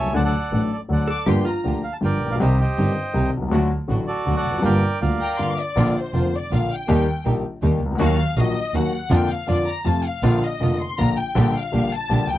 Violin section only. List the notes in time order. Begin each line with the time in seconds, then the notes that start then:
1.09 D6
1.27 C6
1.48 A#5
5.20 G5 A#5
5.38 F5 C6
5.49 D6
5.61 D5
5.98 C5
6.36 D5
6.54 F5
6.73 G5
8.01 F5
8.38 D#5
8.75 F#5
9.13 G5
9.31 F5
9.50 D5
9.68 A#5
9.86 A5
10.06 F5
10.44 D#5
10.80 C6
10.99 A#5
11.18 G5
11.56 F5
11.93 A5
12.30 G5